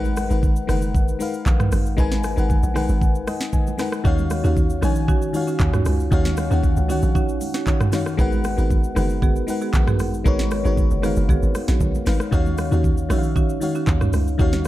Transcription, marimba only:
4.05 4.18 C#4 loud
4.05 4.18 D#4 medium
4.05 4.18 F#4 loud
4.44 4.56 C#4 medium
4.44 4.56 D#4 medium
4.44 4.56 F#4 medium
4.82 4.95 C#4 medium
4.82 4.95 D#4 medium
4.82 4.96 F#4 medium
5.08 5.44 C#4 loud
5.08 5.45 D#4 medium
5.08 5.45 F#4 loud
5.47 5.59 C#4 medium
5.47 5.60 D#4 medium
5.47 5.60 F#4 medium
5.73 5.85 C#4 medium
5.73 5.85 D#4 medium
5.73 5.86 F#4 medium
6.11 6.25 C#4 medium
6.11 6.25 D#4 medium
6.11 6.25 F#4 loud
6.51 6.63 C#4 medium
6.51 6.63 D#4 medium
6.51 6.63 F#4 medium
6.89 7.02 C#4 medium
6.89 7.02 D#4 medium
6.89 7.02 F#4 medium
7.15 7.51 C#4 loud
7.15 7.51 D#4 medium
7.15 7.52 F#4 loud
7.54 7.66 C#4 medium
7.54 7.67 D#4 medium
7.54 7.67 F#4 medium
8.19 8.31 B3 medium
8.19 8.32 F#4 medium
8.19 8.32 G#4 loud
8.58 8.70 B3 medium
8.58 8.70 F#4 medium
8.58 8.70 G#4 medium
8.96 9.09 B3 medium
8.96 9.09 F#4 medium
8.96 9.09 G#4 medium
9.22 9.58 B3 loud
9.22 9.58 F#4 medium
9.22 9.59 G#4 loud
9.61 9.73 B3 medium
9.61 9.73 F#4 medium
9.61 9.74 G#4 medium
9.87 9.99 B3 medium
9.87 9.99 F#4 medium
9.87 9.99 G#4 medium
10.25 10.38 B3 medium
10.25 10.39 F#4 medium
10.25 10.39 G#4 loud
10.65 10.77 B3 medium
10.65 10.77 F#4 medium
10.65 10.77 G#4 medium
11.03 11.16 B3 medium
11.03 11.16 F#4 medium
11.03 11.16 G#4 medium
11.29 11.65 B3 loud
11.29 11.65 F#4 medium
11.29 11.65 G#4 loud
11.68 11.80 B3 medium
11.68 11.80 F#4 medium
11.68 11.80 G#4 medium
12.32 12.45 C#4 medium
12.32 12.45 D#4 medium
12.32 12.46 F#4 loud
12.72 12.84 C#4 medium
12.72 12.84 D#4 medium
12.72 12.84 F#4 medium
13.10 13.23 C#4 medium
13.10 13.23 D#4 medium
13.10 13.23 F#4 medium
13.36 13.72 C#4 loud
13.36 13.72 D#4 medium
13.36 13.72 F#4 loud
13.75 13.87 C#4 medium
13.75 13.87 D#4 medium
13.75 13.87 F#4 medium
14.01 14.13 C#4 medium
14.01 14.13 D#4 medium
14.01 14.13 F#4 medium
14.39 14.52 C#4 medium
14.39 14.52 D#4 medium
14.39 14.53 F#4 loud

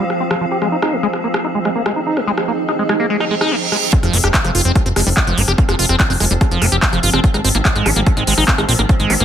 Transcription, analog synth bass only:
4.03 4.10 F1 medium
4.13 4.20 F1 loud
4.24 4.30 F1 loud
4.44 4.51 F1 medium
4.55 4.61 F1 loud
4.65 4.72 F1 loud
4.86 4.92 F1 medium
4.96 5.03 F1 loud
5.07 5.13 F1 medium
5.27 5.34 F1 medium
5.38 5.44 G1 loud
5.48 5.54 F1 medium
5.69 5.75 F1 medium
5.79 5.85 F1 loud
5.89 5.96 F1 medium
6.10 6.17 F1 medium
6.20 6.27 F1 loud
6.31 6.37 F1 loud
6.51 6.58 F1 medium
6.62 6.68 F1 loud
6.72 6.79 F1 medium
6.93 6.99 F1 medium
7.03 7.10 G1 loud
7.13 7.20 F1 medium
7.34 7.41 G#1 medium
7.44 7.51 G#1 loud
7.55 7.61 G#1 medium
7.76 7.82 G#1 medium
7.86 7.92 G#1 loud
7.96 8.03 G#1 loud
8.17 8.23 G#1 medium
8.27 8.34 G#1 loud
8.38 8.44 G#1 medium
8.58 8.65 G#1 medium
8.69 8.75 A#1 medium
8.79 8.85 G#1 medium
9.00 9.06 G#1 medium
9.10 9.16 G#1 loud
9.20 9.25 G#1 medium

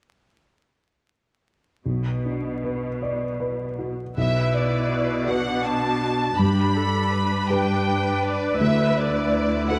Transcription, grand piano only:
1.86 4.13 B1 soft
2.25 2.87 D4 soft
2.64 3.24 B4 soft
3.02 3.63 D5 soft
3.40 4.02 B4 soft
3.79 4.17 F#4 soft
4.17 6.35 B1 soft
5.28 6.35 F#4 soft
5.28 6.35 B4 soft
6.39 8.56 G2 soft
7.50 8.56 G4 soft
7.50 8.56 B4 soft
8.61 9.79 D2 soft
9.70 9.79 F#4 soft
9.70 9.79 A4 soft

